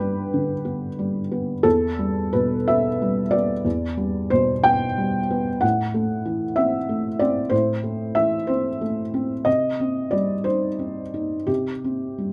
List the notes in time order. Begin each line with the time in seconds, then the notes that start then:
Already playing: G2 B3 B4 G5 B5 D6
0.01 G3
0.34 D3
0.65 B3
0.99 G3
1.32 B3
1.63 E2 A4
1.99 G3
2.33 B2 B4
2.68 B3 E5
3.02 G3
3.31 B3 D5
3.65 E2
3.97 G3
4.30 B2 C5
4.64 B3 G5
4.98 G3
5.30 B3
5.61 A2 F#5
5.94 A3
6.25 E3
6.56 C4 E5
6.89 A3
7.19 C4 D5
7.50 A2 C5
7.84 A3
8.15 E3 E5
8.47 C4 C5
8.81 A3
9.14 C4
9.45 C3 D#5
9.80 C4
10.11 G3 D5
10.44 D#4 C5
10.79 C4
11.14 D#4
11.47 C3 G4
11.84 C4
12.18 G3